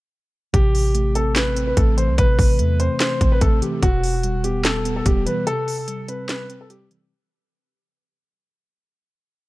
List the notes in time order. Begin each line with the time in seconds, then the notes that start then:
0.53 A1 C3 G4, kick, closed hi-hat
0.75 open hi-hat
0.95 A3, closed hi-hat
1.15 C4 A4, closed hi-hat
1.36 B4, snare, clap, closed hi-hat
1.56 C4, closed hi-hat
1.67 B4
1.77 A1 A3 A4, kick, closed hi-hat
1.98 E3 C5, closed hi-hat
2.08 C2
2.18 A1 C3 B4, kick, closed hi-hat
2.39 A1, kick, open hi-hat
2.59 E2 A3, closed hi-hat
2.80 C4 C5, closed hi-hat
3.00 C5, snare, clap, closed hi-hat
3.21 A1 C4, kick, closed hi-hat
3.32 B4
3.41 A1 A3 A4, kick, closed hi-hat
3.62 E3 G4, closed hi-hat
3.83 E1 B2 F#4, kick, closed hi-hat
4.04 open hi-hat
4.23 G3, closed hi-hat
4.44 B3 G4, closed hi-hat
4.65 A4, snare, clap, closed hi-hat
4.85 B3, closed hi-hat
4.96 A4
5.06 E1 G3 G4, kick, closed hi-hat
5.26 E3 B4, closed hi-hat
5.47 C3 A4, closed hi-hat
5.68 open hi-hat
5.88 G3, closed hi-hat
6.08 C4 B4, closed hi-hat
6.29 B4, snare, clap, closed hi-hat
6.50 C4, closed hi-hat
6.61 A4
6.70 G3 G4, closed hi-hat
6.90 E3, closed hi-hat